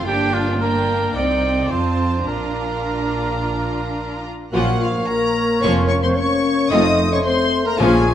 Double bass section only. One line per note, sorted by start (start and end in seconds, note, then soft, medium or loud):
0.07 1.11 G1 soft
1.15 1.69 C2 soft
1.70 2.26 F2 soft
2.26 4.33 A#1 soft
4.52 4.99 A#1 medium
5.63 6.08 F1 medium
6.71 7.17 F1 medium
7.80 8.14 A#1 medium